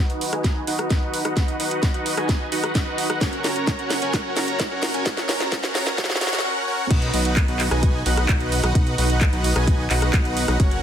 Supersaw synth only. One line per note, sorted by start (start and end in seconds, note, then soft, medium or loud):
0.10 0.30 D#4 medium
0.10 0.30 F#4 medium
0.10 0.30 B4 medium
0.10 0.30 D#5 medium
0.10 0.30 F#5 medium
0.33 0.61 D#4 loud
0.33 0.61 F#4 medium
0.33 0.61 B4 medium
0.33 0.61 D#5 medium
0.33 0.61 G#5 loud
0.67 0.88 D#4 medium
0.67 0.88 F#4 medium
0.67 0.88 B4 medium
0.67 0.88 D#5 medium
0.67 0.88 F#5 loud
0.90 1.22 D#4 medium
0.90 1.22 F#4 medium
0.90 1.22 B4 medium
0.90 1.22 D#5 medium
0.90 1.22 F#5 medium
1.25 1.34 D#4 medium
1.25 1.34 F#4 medium
1.25 1.34 B4 medium
1.25 1.34 D#5 medium
1.25 1.34 F#5 medium
1.37 1.56 D#4 medium
1.37 1.56 F#4 medium
1.37 1.56 B4 medium
1.37 1.56 D#5 medium
1.37 1.56 F#5 medium
1.60 1.92 D#4 medium
1.60 1.92 F#4 medium
1.60 1.92 B4 medium
1.60 1.92 D#5 medium
1.60 1.92 F#5 medium
1.94 2.15 D#4 medium
1.94 2.15 F#4 medium
1.94 2.15 B4 medium
1.94 2.15 D#5 medium
1.94 2.15 F#5 medium
2.17 2.45 D#4 loud
2.17 2.45 F#4 medium
2.17 2.45 B4 medium
2.17 2.45 D#5 medium
2.17 2.45 G#5 loud
2.52 2.72 D#4 medium
2.52 2.72 F#4 medium
2.52 2.72 B4 medium
2.52 2.72 D#5 medium
2.52 2.72 F#5 loud
2.75 3.07 D#4 medium
2.75 3.07 F#4 medium
2.75 3.07 B4 medium
2.75 3.07 D#5 medium
2.75 3.07 F#5 medium
3.10 3.19 D#4 medium
3.10 3.19 F#4 medium
3.10 3.19 B4 medium
3.10 3.19 D#5 medium
3.10 3.19 F#5 medium
3.21 3.41 C#4 medium
3.21 3.41 F#4 medium
3.21 3.41 A#4 medium
3.21 3.41 C#5 medium
3.21 3.41 F#5 medium
3.44 3.76 C#4 medium
3.44 3.76 F#4 medium
3.44 3.76 A#4 medium
3.44 3.76 C#5 medium
3.44 3.76 A#5 medium
3.79 3.99 C#4 medium
3.79 3.99 F#4 medium
3.79 3.99 A#4 medium
3.79 3.99 C#5 medium
3.79 3.99 F#5 medium
4.02 4.12 C#4 medium
4.02 4.12 F#4 medium
4.02 4.12 A#4 medium
4.02 4.12 C#5 medium
4.02 4.12 G#5 loud
4.13 4.33 C#4 medium
4.13 4.33 F#4 medium
4.13 4.33 A#4 medium
4.13 4.33 C#5 medium
4.13 4.33 F#5 medium
4.37 4.69 C#4 medium
4.37 4.69 F#4 medium
4.37 4.69 A#4 medium
4.37 4.69 C#5 medium
4.37 4.69 A#5 medium
4.71 4.92 C#4 medium
4.71 4.92 F#4 medium
4.71 4.92 A#4 medium
4.71 4.92 C#5 medium
4.71 4.92 F#5 medium
4.94 5.04 C#4 medium
4.94 5.04 F#4 medium
4.94 5.04 A#4 medium
4.94 5.04 C#5 medium
4.94 5.04 G#5 loud
5.06 5.25 C#4 medium
5.06 5.25 F#4 medium
5.06 5.26 A#4 medium
5.06 5.25 C#5 medium
5.06 5.25 F#5 medium
5.29 5.50 C#4 medium
5.29 5.50 F#4 medium
5.29 5.50 A#4 medium
5.29 5.50 C#5 medium
5.29 5.50 A#5 medium
5.52 5.72 C#4 medium
5.52 5.72 F#4 medium
5.52 5.72 A#4 medium
5.52 5.72 C#5 medium
5.52 5.72 F#5 medium
5.75 5.96 C#4 medium
5.75 5.96 F#4 medium
5.75 5.96 A#4 medium
5.75 5.96 C#5 medium
5.75 5.96 A#5 medium
5.98 6.18 C#4 medium
5.98 6.18 F#4 medium
5.98 6.18 A#4 medium
5.98 6.18 C#5 medium
5.98 6.18 F#5 medium
6.21 6.41 C#4 medium
6.21 6.41 F#4 medium
6.21 6.41 A#4 medium
6.21 6.41 C#5 medium
6.21 6.41 F#5 medium
6.44 6.64 C#4 medium
6.44 6.64 F#4 medium
6.44 6.64 A#4 medium
6.44 6.64 C#5 medium
6.44 6.64 F#5 loud
6.67 6.87 C#4 medium
6.67 6.87 F#4 medium
6.67 6.87 A#4 medium
6.67 6.87 C#5 medium
6.67 6.87 F#5 medium
6.91 7.10 D#4 medium
6.91 7.10 F#4 medium
6.91 7.10 B4 medium
6.91 7.10 D#5 medium
6.91 7.10 F#5 medium
7.14 7.46 D#4 medium
7.14 7.46 F#4 medium
7.14 7.46 B4 medium
7.14 7.46 D#5 medium
7.14 7.46 F#5 medium
7.48 7.69 D#4 medium
7.48 7.69 F#4 medium
7.48 7.69 B4 medium
7.48 7.69 D#5 medium
7.48 7.69 F#5 medium
7.71 7.99 D#4 loud
7.71 7.99 F#4 medium
7.71 7.99 B4 medium
7.71 7.99 D#5 medium
7.71 7.99 G#5 loud
8.06 8.26 D#4 medium
8.06 8.26 F#4 medium
8.06 8.26 B4 medium
8.06 8.26 D#5 medium
8.06 8.26 F#5 loud
8.29 8.61 D#4 medium
8.29 8.61 F#4 medium
8.29 8.61 B4 medium
8.29 8.61 D#5 medium
8.29 8.61 F#5 medium
8.64 8.72 D#4 medium
8.64 8.72 F#4 medium
8.64 8.72 B4 medium
8.64 8.72 D#5 medium
8.64 8.72 F#5 loud
8.75 8.95 D#4 medium
8.75 8.95 F#4 medium
8.75 8.95 B4 medium
8.75 8.95 D#5 medium
8.75 8.95 F#5 medium
8.98 9.30 D#4 medium
8.98 9.30 F#4 medium
8.98 9.30 B4 medium
8.98 9.30 D#5 medium
8.98 9.30 F#5 medium
9.33 9.53 D#4 medium
9.33 9.53 F#4 medium
9.33 9.53 B4 medium
9.33 9.53 D#5 medium
9.33 9.53 F#5 medium
9.56 9.84 D#4 loud
9.56 9.84 F#4 medium
9.56 9.84 B4 medium
9.56 9.84 D#5 medium
9.56 9.84 G#5 loud
9.90 10.11 D#4 medium
9.90 10.11 F#4 medium
9.90 10.11 B4 medium
9.90 10.11 D#5 medium
9.90 10.11 F#5 loud
10.14 10.45 D#4 medium
10.14 10.45 F#4 medium
10.14 10.45 B4 medium
10.14 10.45 D#5 medium
10.14 10.45 F#5 medium
10.48 10.57 D#4 medium
10.48 10.57 F#4 medium
10.48 10.57 B4 medium
10.48 10.57 D#5 medium
10.48 10.57 F#5 medium
10.60 10.79 C#4 medium
10.60 10.79 F#4 medium
10.60 10.79 A#4 medium
10.60 10.79 C#5 medium
10.60 10.79 F#5 medium